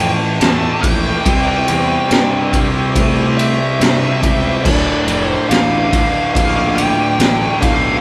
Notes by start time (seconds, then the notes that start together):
Already playing: F2 A2 E3 A3
0.40 E2 A2 E3 A3 A5, snare, ride
0.82 A#1 A2 E3 A3 G5, kick, ride
1.24 C2 C3 G3 C4, kick, ride
1.29 C4
1.68 E2, ride
2.10 G2, snare, ride
2.53 C3 G3 C4, kick, ride
2.95 A2, kick, ride
3.38 E5, ride
3.80 G2 C3 G3 C4, snare, ride
4.21 C#2 C3 G3 C4, kick, ride
4.63 D1 D2 A2 D3 D5, kick, crash
4.68 D3
5.07 F1, ride
5.28 C5
5.49 A1 F5, snare, ride
5.91 D2 A2 D3, kick, ride
6.34 A#1 F5, kick, ride
6.75 G5, ride
7.18 A1 D2 A2, snare, ride
7.22 D3
7.61 B1 D2 A2 D3 F5, kick, ride